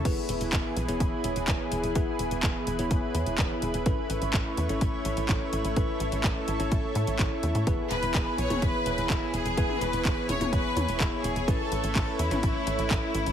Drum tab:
CC |x---------------|----------------|----------------|----------------|
HH |x-xxx-xxx-xxx-xx|x-xxx-xxx-xxx-xx|x-xxx-xxx-xxx-xx|x-xxx-xxx-xxx-xx|
CP |----x-------x---|----x-------x---|----x-------x---|----x-------x---|
T1 |----------------|----------------|----------------|----------------|
BD |o---o---o---o---|o---o---o---o---|o---o---o---o---|o---o---o---o---|

CC |----------------|----------------|----------------|
HH |x-xxx-xxx-xxx-xx|x-xxx-xxx-xxx-xx|x-xxx-xxx-xxx-xx|
CP |----x-------x---|----x-------x---|----x-------x---|
T1 |-------o--------|-o----oo--o-----|-------o--------|
BD |o---o---o---o---|o---o---o---o---|o---o---o---o---|